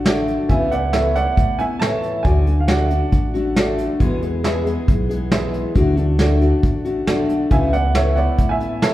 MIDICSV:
0, 0, Header, 1, 6, 480
1, 0, Start_track
1, 0, Tempo, 438276
1, 542, Time_signature, 4, 2, 24, 8
1, 9790, End_track
2, 0, Start_track
2, 0, Title_t, "Upright piano"
2, 0, Program_c, 0, 0
2, 0, Note_on_c, 0, 74, 67
2, 0, Note_on_c, 0, 78, 84
2, 264, Note_off_c, 0, 74, 0
2, 264, Note_off_c, 0, 78, 0
2, 539, Note_on_c, 0, 80, 78
2, 551, Note_on_c, 0, 76, 72
2, 764, Note_off_c, 0, 80, 0
2, 770, Note_off_c, 0, 76, 0
2, 781, Note_on_c, 0, 78, 85
2, 791, Note_on_c, 0, 74, 66
2, 1005, Note_off_c, 0, 78, 0
2, 1011, Note_off_c, 0, 74, 0
2, 1017, Note_on_c, 0, 76, 81
2, 1033, Note_on_c, 0, 73, 64
2, 1252, Note_off_c, 0, 73, 0
2, 1265, Note_on_c, 0, 78, 98
2, 1267, Note_off_c, 0, 76, 0
2, 1275, Note_on_c, 0, 74, 67
2, 1717, Note_off_c, 0, 74, 0
2, 1738, Note_on_c, 0, 80, 101
2, 1759, Note_off_c, 0, 78, 0
2, 1762, Note_on_c, 0, 76, 74
2, 1966, Note_on_c, 0, 81, 103
2, 1967, Note_off_c, 0, 76, 0
2, 1983, Note_on_c, 0, 76, 66
2, 1988, Note_off_c, 0, 80, 0
2, 2430, Note_off_c, 0, 76, 0
2, 2441, Note_on_c, 0, 80, 85
2, 2462, Note_on_c, 0, 74, 61
2, 2470, Note_off_c, 0, 81, 0
2, 2839, Note_off_c, 0, 74, 0
2, 2852, Note_on_c, 0, 77, 57
2, 2869, Note_off_c, 0, 80, 0
2, 2932, Note_on_c, 0, 78, 80
2, 2937, Note_off_c, 0, 77, 0
2, 2957, Note_on_c, 0, 74, 64
2, 4096, Note_off_c, 0, 78, 0
2, 4108, Note_off_c, 0, 74, 0
2, 8228, Note_on_c, 0, 80, 85
2, 8237, Note_on_c, 0, 76, 72
2, 8450, Note_off_c, 0, 80, 0
2, 8454, Note_off_c, 0, 76, 0
2, 8465, Note_on_c, 0, 78, 96
2, 8473, Note_on_c, 0, 74, 65
2, 8692, Note_off_c, 0, 74, 0
2, 8708, Note_on_c, 0, 76, 83
2, 8712, Note_off_c, 0, 78, 0
2, 8722, Note_on_c, 0, 73, 69
2, 8929, Note_off_c, 0, 76, 0
2, 8933, Note_on_c, 0, 78, 77
2, 8937, Note_off_c, 0, 73, 0
2, 8947, Note_on_c, 0, 74, 68
2, 9280, Note_off_c, 0, 74, 0
2, 9301, Note_on_c, 0, 80, 91
2, 9309, Note_off_c, 0, 78, 0
2, 9323, Note_on_c, 0, 76, 81
2, 9636, Note_off_c, 0, 80, 0
2, 9648, Note_off_c, 0, 76, 0
2, 9661, Note_on_c, 0, 81, 96
2, 9674, Note_on_c, 0, 76, 76
2, 9790, Note_off_c, 0, 76, 0
2, 9790, Note_off_c, 0, 81, 0
2, 9790, End_track
3, 0, Start_track
3, 0, Title_t, "Grand piano"
3, 0, Program_c, 1, 0
3, 56, Note_on_c, 1, 66, 85
3, 65, Note_on_c, 1, 69, 69
3, 69, Note_on_c, 1, 74, 93
3, 381, Note_off_c, 1, 66, 0
3, 385, Note_off_c, 1, 69, 0
3, 387, Note_off_c, 1, 74, 0
3, 1018, Note_on_c, 1, 69, 72
3, 1028, Note_on_c, 1, 71, 58
3, 1029, Note_on_c, 1, 73, 74
3, 1343, Note_off_c, 1, 69, 0
3, 1348, Note_off_c, 1, 71, 0
3, 1348, Note_off_c, 1, 73, 0
3, 1989, Note_on_c, 1, 69, 71
3, 1992, Note_on_c, 1, 71, 65
3, 2001, Note_on_c, 1, 73, 81
3, 2309, Note_off_c, 1, 69, 0
3, 2310, Note_off_c, 1, 71, 0
3, 2314, Note_off_c, 1, 73, 0
3, 2942, Note_on_c, 1, 66, 65
3, 2948, Note_on_c, 1, 69, 58
3, 2956, Note_on_c, 1, 74, 81
3, 3266, Note_off_c, 1, 66, 0
3, 3269, Note_off_c, 1, 69, 0
3, 3272, Note_off_c, 1, 74, 0
3, 3905, Note_on_c, 1, 66, 80
3, 3914, Note_on_c, 1, 69, 76
3, 3918, Note_on_c, 1, 74, 93
3, 4227, Note_off_c, 1, 66, 0
3, 4232, Note_off_c, 1, 69, 0
3, 4234, Note_off_c, 1, 74, 0
3, 4860, Note_on_c, 1, 68, 87
3, 4871, Note_on_c, 1, 71, 77
3, 4875, Note_on_c, 1, 76, 93
3, 5185, Note_off_c, 1, 68, 0
3, 5190, Note_off_c, 1, 71, 0
3, 5192, Note_off_c, 1, 76, 0
3, 5820, Note_on_c, 1, 68, 83
3, 5825, Note_on_c, 1, 71, 77
3, 5830, Note_on_c, 1, 76, 98
3, 6145, Note_off_c, 1, 68, 0
3, 6147, Note_off_c, 1, 71, 0
3, 6150, Note_off_c, 1, 76, 0
3, 6783, Note_on_c, 1, 66, 84
3, 6789, Note_on_c, 1, 69, 70
3, 6795, Note_on_c, 1, 74, 83
3, 7106, Note_off_c, 1, 66, 0
3, 7109, Note_off_c, 1, 69, 0
3, 7112, Note_off_c, 1, 74, 0
3, 7740, Note_on_c, 1, 66, 81
3, 7744, Note_on_c, 1, 69, 78
3, 7750, Note_on_c, 1, 74, 89
3, 8064, Note_off_c, 1, 66, 0
3, 8066, Note_off_c, 1, 69, 0
3, 8069, Note_off_c, 1, 74, 0
3, 8702, Note_on_c, 1, 69, 65
3, 8711, Note_on_c, 1, 71, 62
3, 8717, Note_on_c, 1, 73, 77
3, 9024, Note_off_c, 1, 69, 0
3, 9029, Note_off_c, 1, 71, 0
3, 9032, Note_off_c, 1, 73, 0
3, 9660, Note_on_c, 1, 69, 69
3, 9672, Note_on_c, 1, 71, 64
3, 9675, Note_on_c, 1, 73, 77
3, 9790, Note_off_c, 1, 69, 0
3, 9790, Note_off_c, 1, 71, 0
3, 9790, Note_off_c, 1, 73, 0
3, 9790, End_track
4, 0, Start_track
4, 0, Title_t, "Steel-string acoustic guitar"
4, 0, Program_c, 2, 25
4, 46, Note_on_c, 2, 50, 67
4, 55, Note_on_c, 2, 57, 67
4, 60, Note_on_c, 2, 62, 84
4, 66, Note_on_c, 2, 66, 74
4, 534, Note_off_c, 2, 50, 0
4, 540, Note_on_c, 2, 49, 66
4, 541, Note_off_c, 2, 62, 0
4, 543, Note_off_c, 2, 57, 0
4, 545, Note_off_c, 2, 66, 0
4, 546, Note_on_c, 2, 52, 69
4, 547, Note_on_c, 2, 57, 78
4, 554, Note_on_c, 2, 59, 82
4, 559, Note_on_c, 2, 64, 71
4, 756, Note_off_c, 2, 64, 0
4, 769, Note_on_c, 2, 64, 46
4, 770, Note_off_c, 2, 59, 0
4, 777, Note_off_c, 2, 57, 0
4, 781, Note_off_c, 2, 49, 0
4, 783, Note_on_c, 2, 59, 44
4, 784, Note_off_c, 2, 52, 0
4, 790, Note_on_c, 2, 57, 41
4, 1011, Note_off_c, 2, 57, 0
4, 1016, Note_off_c, 2, 64, 0
4, 1017, Note_on_c, 2, 52, 53
4, 1023, Note_off_c, 2, 59, 0
4, 1024, Note_on_c, 2, 57, 50
4, 1034, Note_on_c, 2, 59, 67
4, 1039, Note_on_c, 2, 64, 66
4, 1249, Note_off_c, 2, 64, 0
4, 1256, Note_off_c, 2, 59, 0
4, 1260, Note_off_c, 2, 52, 0
4, 1262, Note_on_c, 2, 64, 50
4, 1264, Note_off_c, 2, 57, 0
4, 1269, Note_on_c, 2, 59, 45
4, 1280, Note_on_c, 2, 57, 43
4, 1725, Note_off_c, 2, 64, 0
4, 1736, Note_off_c, 2, 59, 0
4, 1738, Note_on_c, 2, 64, 49
4, 1744, Note_off_c, 2, 57, 0
4, 1749, Note_on_c, 2, 59, 48
4, 1757, Note_on_c, 2, 57, 40
4, 1970, Note_off_c, 2, 57, 0
4, 1973, Note_off_c, 2, 59, 0
4, 1977, Note_on_c, 2, 52, 51
4, 1981, Note_off_c, 2, 64, 0
4, 1984, Note_on_c, 2, 57, 53
4, 1986, Note_on_c, 2, 59, 62
4, 1998, Note_on_c, 2, 64, 65
4, 2452, Note_off_c, 2, 57, 0
4, 2453, Note_off_c, 2, 52, 0
4, 2457, Note_on_c, 2, 50, 66
4, 2465, Note_on_c, 2, 57, 70
4, 2466, Note_off_c, 2, 59, 0
4, 2469, Note_off_c, 2, 64, 0
4, 2470, Note_on_c, 2, 62, 80
4, 2473, Note_on_c, 2, 66, 72
4, 2681, Note_off_c, 2, 66, 0
4, 2691, Note_off_c, 2, 62, 0
4, 2695, Note_on_c, 2, 66, 47
4, 2701, Note_off_c, 2, 50, 0
4, 2702, Note_off_c, 2, 57, 0
4, 2705, Note_on_c, 2, 62, 43
4, 2715, Note_on_c, 2, 57, 38
4, 2926, Note_off_c, 2, 57, 0
4, 2932, Note_off_c, 2, 62, 0
4, 2932, Note_on_c, 2, 50, 54
4, 2937, Note_off_c, 2, 66, 0
4, 2939, Note_on_c, 2, 57, 66
4, 2945, Note_on_c, 2, 62, 60
4, 2950, Note_on_c, 2, 66, 59
4, 3161, Note_off_c, 2, 66, 0
4, 3174, Note_off_c, 2, 62, 0
4, 3174, Note_on_c, 2, 66, 48
4, 3178, Note_off_c, 2, 50, 0
4, 3182, Note_off_c, 2, 57, 0
4, 3187, Note_on_c, 2, 62, 48
4, 3194, Note_on_c, 2, 57, 40
4, 3643, Note_off_c, 2, 66, 0
4, 3655, Note_off_c, 2, 62, 0
4, 3656, Note_on_c, 2, 66, 62
4, 3666, Note_off_c, 2, 57, 0
4, 3668, Note_on_c, 2, 62, 51
4, 3680, Note_on_c, 2, 57, 41
4, 3895, Note_off_c, 2, 57, 0
4, 3898, Note_off_c, 2, 62, 0
4, 3899, Note_on_c, 2, 50, 71
4, 3901, Note_off_c, 2, 66, 0
4, 3908, Note_on_c, 2, 57, 70
4, 3912, Note_on_c, 2, 62, 75
4, 3919, Note_on_c, 2, 66, 72
4, 4377, Note_on_c, 2, 40, 77
4, 4380, Note_off_c, 2, 50, 0
4, 4382, Note_on_c, 2, 47, 71
4, 4384, Note_off_c, 2, 62, 0
4, 4385, Note_off_c, 2, 57, 0
4, 4385, Note_on_c, 2, 52, 77
4, 4388, Note_on_c, 2, 59, 82
4, 4389, Note_off_c, 2, 66, 0
4, 4389, Note_on_c, 2, 56, 83
4, 4394, Note_on_c, 2, 68, 94
4, 4604, Note_off_c, 2, 68, 0
4, 4616, Note_off_c, 2, 59, 0
4, 4617, Note_off_c, 2, 56, 0
4, 4617, Note_on_c, 2, 68, 58
4, 4622, Note_off_c, 2, 40, 0
4, 4624, Note_off_c, 2, 47, 0
4, 4625, Note_off_c, 2, 52, 0
4, 4629, Note_on_c, 2, 59, 49
4, 4630, Note_on_c, 2, 56, 49
4, 4641, Note_on_c, 2, 52, 48
4, 4844, Note_off_c, 2, 52, 0
4, 4850, Note_off_c, 2, 56, 0
4, 4857, Note_on_c, 2, 52, 71
4, 4860, Note_off_c, 2, 59, 0
4, 4862, Note_off_c, 2, 68, 0
4, 4863, Note_on_c, 2, 56, 71
4, 4873, Note_on_c, 2, 59, 61
4, 4876, Note_on_c, 2, 68, 79
4, 5083, Note_off_c, 2, 68, 0
4, 5090, Note_off_c, 2, 59, 0
4, 5096, Note_on_c, 2, 68, 61
4, 5098, Note_off_c, 2, 56, 0
4, 5102, Note_off_c, 2, 52, 0
4, 5103, Note_on_c, 2, 59, 54
4, 5111, Note_on_c, 2, 56, 53
4, 5117, Note_on_c, 2, 52, 46
4, 5564, Note_off_c, 2, 68, 0
4, 5571, Note_off_c, 2, 59, 0
4, 5578, Note_on_c, 2, 68, 61
4, 5579, Note_off_c, 2, 56, 0
4, 5584, Note_off_c, 2, 52, 0
4, 5584, Note_on_c, 2, 59, 47
4, 5592, Note_on_c, 2, 56, 56
4, 5597, Note_on_c, 2, 52, 49
4, 5802, Note_off_c, 2, 52, 0
4, 5811, Note_off_c, 2, 56, 0
4, 5814, Note_off_c, 2, 59, 0
4, 5815, Note_on_c, 2, 52, 68
4, 5822, Note_off_c, 2, 68, 0
4, 5824, Note_on_c, 2, 56, 68
4, 5827, Note_on_c, 2, 59, 68
4, 5838, Note_on_c, 2, 68, 64
4, 6290, Note_off_c, 2, 52, 0
4, 6294, Note_on_c, 2, 50, 77
4, 6295, Note_off_c, 2, 56, 0
4, 6300, Note_off_c, 2, 59, 0
4, 6300, Note_on_c, 2, 57, 76
4, 6304, Note_on_c, 2, 62, 77
4, 6307, Note_off_c, 2, 68, 0
4, 6312, Note_on_c, 2, 66, 90
4, 6517, Note_off_c, 2, 66, 0
4, 6530, Note_on_c, 2, 66, 52
4, 6533, Note_off_c, 2, 62, 0
4, 6539, Note_off_c, 2, 57, 0
4, 6540, Note_off_c, 2, 50, 0
4, 6546, Note_on_c, 2, 62, 53
4, 6552, Note_on_c, 2, 57, 43
4, 6771, Note_off_c, 2, 57, 0
4, 6776, Note_on_c, 2, 50, 63
4, 6778, Note_off_c, 2, 62, 0
4, 6778, Note_off_c, 2, 66, 0
4, 6784, Note_on_c, 2, 57, 69
4, 6791, Note_on_c, 2, 62, 71
4, 6801, Note_on_c, 2, 66, 67
4, 7008, Note_off_c, 2, 66, 0
4, 7018, Note_off_c, 2, 62, 0
4, 7021, Note_off_c, 2, 50, 0
4, 7021, Note_on_c, 2, 66, 61
4, 7025, Note_off_c, 2, 57, 0
4, 7031, Note_on_c, 2, 62, 54
4, 7041, Note_on_c, 2, 57, 46
4, 7487, Note_off_c, 2, 66, 0
4, 7499, Note_off_c, 2, 62, 0
4, 7500, Note_on_c, 2, 66, 55
4, 7512, Note_on_c, 2, 62, 49
4, 7516, Note_off_c, 2, 57, 0
4, 7520, Note_on_c, 2, 57, 42
4, 7736, Note_off_c, 2, 57, 0
4, 7743, Note_off_c, 2, 66, 0
4, 7745, Note_on_c, 2, 50, 66
4, 7749, Note_off_c, 2, 62, 0
4, 7749, Note_on_c, 2, 57, 68
4, 7760, Note_on_c, 2, 62, 72
4, 7765, Note_on_c, 2, 66, 72
4, 8216, Note_off_c, 2, 57, 0
4, 8219, Note_off_c, 2, 50, 0
4, 8219, Note_on_c, 2, 49, 77
4, 8220, Note_on_c, 2, 57, 76
4, 8222, Note_off_c, 2, 66, 0
4, 8223, Note_off_c, 2, 62, 0
4, 8223, Note_on_c, 2, 52, 74
4, 8226, Note_on_c, 2, 64, 75
4, 8227, Note_on_c, 2, 59, 82
4, 8440, Note_off_c, 2, 64, 0
4, 8451, Note_off_c, 2, 59, 0
4, 8453, Note_on_c, 2, 64, 47
4, 8462, Note_off_c, 2, 49, 0
4, 8462, Note_off_c, 2, 57, 0
4, 8464, Note_off_c, 2, 52, 0
4, 8464, Note_on_c, 2, 59, 49
4, 8474, Note_on_c, 2, 57, 41
4, 8697, Note_off_c, 2, 57, 0
4, 8699, Note_off_c, 2, 64, 0
4, 8701, Note_on_c, 2, 52, 51
4, 8704, Note_off_c, 2, 59, 0
4, 8710, Note_on_c, 2, 57, 56
4, 8718, Note_on_c, 2, 59, 66
4, 8721, Note_on_c, 2, 64, 62
4, 8932, Note_off_c, 2, 64, 0
4, 8942, Note_off_c, 2, 52, 0
4, 8943, Note_off_c, 2, 59, 0
4, 8945, Note_on_c, 2, 64, 49
4, 8947, Note_off_c, 2, 57, 0
4, 8956, Note_on_c, 2, 59, 47
4, 8965, Note_on_c, 2, 57, 42
4, 9409, Note_off_c, 2, 64, 0
4, 9422, Note_off_c, 2, 59, 0
4, 9422, Note_on_c, 2, 64, 46
4, 9434, Note_off_c, 2, 57, 0
4, 9435, Note_on_c, 2, 59, 51
4, 9448, Note_on_c, 2, 57, 47
4, 9655, Note_on_c, 2, 52, 61
4, 9656, Note_off_c, 2, 57, 0
4, 9660, Note_off_c, 2, 59, 0
4, 9663, Note_off_c, 2, 64, 0
4, 9669, Note_on_c, 2, 57, 59
4, 9673, Note_on_c, 2, 59, 67
4, 9678, Note_on_c, 2, 64, 67
4, 9790, Note_off_c, 2, 52, 0
4, 9790, Note_off_c, 2, 57, 0
4, 9790, Note_off_c, 2, 59, 0
4, 9790, Note_off_c, 2, 64, 0
4, 9790, End_track
5, 0, Start_track
5, 0, Title_t, "Upright bass"
5, 0, Program_c, 3, 32
5, 0, Note_on_c, 3, 33, 76
5, 401, Note_off_c, 3, 33, 0
5, 539, Note_on_c, 3, 37, 80
5, 1360, Note_off_c, 3, 37, 0
5, 1504, Note_on_c, 3, 45, 79
5, 2324, Note_off_c, 3, 45, 0
5, 2460, Note_on_c, 3, 38, 80
5, 3281, Note_off_c, 3, 38, 0
5, 3417, Note_on_c, 3, 33, 77
5, 4240, Note_off_c, 3, 33, 0
5, 4387, Note_on_c, 3, 40, 90
5, 5206, Note_off_c, 3, 40, 0
5, 5351, Note_on_c, 3, 35, 77
5, 6168, Note_off_c, 3, 35, 0
5, 6299, Note_on_c, 3, 38, 82
5, 7120, Note_off_c, 3, 38, 0
5, 7266, Note_on_c, 3, 33, 72
5, 7673, Note_off_c, 3, 33, 0
5, 7747, Note_on_c, 3, 35, 66
5, 8154, Note_off_c, 3, 35, 0
5, 8224, Note_on_c, 3, 37, 80
5, 9042, Note_off_c, 3, 37, 0
5, 9183, Note_on_c, 3, 45, 75
5, 9790, Note_off_c, 3, 45, 0
5, 9790, End_track
6, 0, Start_track
6, 0, Title_t, "Drums"
6, 61, Note_on_c, 9, 38, 106
6, 61, Note_on_c, 9, 42, 83
6, 171, Note_off_c, 9, 38, 0
6, 171, Note_off_c, 9, 42, 0
6, 303, Note_on_c, 9, 42, 67
6, 413, Note_off_c, 9, 42, 0
6, 540, Note_on_c, 9, 42, 81
6, 542, Note_on_c, 9, 36, 100
6, 650, Note_off_c, 9, 42, 0
6, 652, Note_off_c, 9, 36, 0
6, 786, Note_on_c, 9, 42, 65
6, 896, Note_off_c, 9, 42, 0
6, 1020, Note_on_c, 9, 38, 86
6, 1020, Note_on_c, 9, 42, 80
6, 1129, Note_off_c, 9, 38, 0
6, 1129, Note_off_c, 9, 42, 0
6, 1264, Note_on_c, 9, 42, 60
6, 1373, Note_off_c, 9, 42, 0
6, 1505, Note_on_c, 9, 36, 101
6, 1505, Note_on_c, 9, 42, 75
6, 1614, Note_off_c, 9, 36, 0
6, 1614, Note_off_c, 9, 42, 0
6, 1745, Note_on_c, 9, 42, 63
6, 1855, Note_off_c, 9, 42, 0
6, 1989, Note_on_c, 9, 38, 99
6, 1989, Note_on_c, 9, 42, 76
6, 2099, Note_off_c, 9, 38, 0
6, 2099, Note_off_c, 9, 42, 0
6, 2225, Note_on_c, 9, 42, 54
6, 2334, Note_off_c, 9, 42, 0
6, 2459, Note_on_c, 9, 42, 67
6, 2463, Note_on_c, 9, 36, 100
6, 2569, Note_off_c, 9, 42, 0
6, 2573, Note_off_c, 9, 36, 0
6, 2702, Note_on_c, 9, 42, 56
6, 2811, Note_off_c, 9, 42, 0
6, 2935, Note_on_c, 9, 38, 94
6, 2935, Note_on_c, 9, 42, 70
6, 3045, Note_off_c, 9, 38, 0
6, 3045, Note_off_c, 9, 42, 0
6, 3180, Note_on_c, 9, 42, 62
6, 3289, Note_off_c, 9, 42, 0
6, 3419, Note_on_c, 9, 42, 75
6, 3422, Note_on_c, 9, 36, 89
6, 3529, Note_off_c, 9, 42, 0
6, 3531, Note_off_c, 9, 36, 0
6, 3667, Note_on_c, 9, 42, 61
6, 3776, Note_off_c, 9, 42, 0
6, 3903, Note_on_c, 9, 38, 107
6, 3903, Note_on_c, 9, 42, 85
6, 4012, Note_off_c, 9, 38, 0
6, 4012, Note_off_c, 9, 42, 0
6, 4143, Note_on_c, 9, 42, 65
6, 4253, Note_off_c, 9, 42, 0
6, 4382, Note_on_c, 9, 42, 81
6, 4384, Note_on_c, 9, 36, 99
6, 4491, Note_off_c, 9, 42, 0
6, 4494, Note_off_c, 9, 36, 0
6, 4626, Note_on_c, 9, 42, 58
6, 4736, Note_off_c, 9, 42, 0
6, 4866, Note_on_c, 9, 38, 89
6, 4866, Note_on_c, 9, 42, 76
6, 4975, Note_off_c, 9, 38, 0
6, 4975, Note_off_c, 9, 42, 0
6, 5109, Note_on_c, 9, 42, 63
6, 5219, Note_off_c, 9, 42, 0
6, 5346, Note_on_c, 9, 42, 70
6, 5347, Note_on_c, 9, 36, 98
6, 5456, Note_off_c, 9, 42, 0
6, 5457, Note_off_c, 9, 36, 0
6, 5592, Note_on_c, 9, 42, 68
6, 5702, Note_off_c, 9, 42, 0
6, 5822, Note_on_c, 9, 38, 108
6, 5822, Note_on_c, 9, 42, 80
6, 5931, Note_off_c, 9, 38, 0
6, 5931, Note_off_c, 9, 42, 0
6, 6064, Note_on_c, 9, 42, 62
6, 6173, Note_off_c, 9, 42, 0
6, 6300, Note_on_c, 9, 42, 78
6, 6304, Note_on_c, 9, 36, 103
6, 6410, Note_off_c, 9, 42, 0
6, 6413, Note_off_c, 9, 36, 0
6, 6538, Note_on_c, 9, 42, 53
6, 6648, Note_off_c, 9, 42, 0
6, 6778, Note_on_c, 9, 38, 93
6, 6778, Note_on_c, 9, 42, 66
6, 6888, Note_off_c, 9, 38, 0
6, 6888, Note_off_c, 9, 42, 0
6, 7024, Note_on_c, 9, 42, 57
6, 7133, Note_off_c, 9, 42, 0
6, 7265, Note_on_c, 9, 36, 100
6, 7267, Note_on_c, 9, 42, 77
6, 7375, Note_off_c, 9, 36, 0
6, 7377, Note_off_c, 9, 42, 0
6, 7506, Note_on_c, 9, 42, 64
6, 7616, Note_off_c, 9, 42, 0
6, 7747, Note_on_c, 9, 38, 100
6, 7747, Note_on_c, 9, 42, 81
6, 7857, Note_off_c, 9, 38, 0
6, 7857, Note_off_c, 9, 42, 0
6, 7987, Note_on_c, 9, 42, 65
6, 8097, Note_off_c, 9, 42, 0
6, 8222, Note_on_c, 9, 42, 84
6, 8225, Note_on_c, 9, 36, 96
6, 8332, Note_off_c, 9, 42, 0
6, 8335, Note_off_c, 9, 36, 0
6, 8468, Note_on_c, 9, 42, 65
6, 8577, Note_off_c, 9, 42, 0
6, 8705, Note_on_c, 9, 38, 109
6, 8705, Note_on_c, 9, 42, 69
6, 8814, Note_off_c, 9, 38, 0
6, 8814, Note_off_c, 9, 42, 0
6, 8943, Note_on_c, 9, 42, 55
6, 9053, Note_off_c, 9, 42, 0
6, 9182, Note_on_c, 9, 42, 85
6, 9184, Note_on_c, 9, 36, 91
6, 9292, Note_off_c, 9, 42, 0
6, 9293, Note_off_c, 9, 36, 0
6, 9423, Note_on_c, 9, 42, 67
6, 9533, Note_off_c, 9, 42, 0
6, 9663, Note_on_c, 9, 38, 105
6, 9663, Note_on_c, 9, 42, 82
6, 9772, Note_off_c, 9, 38, 0
6, 9772, Note_off_c, 9, 42, 0
6, 9790, End_track
0, 0, End_of_file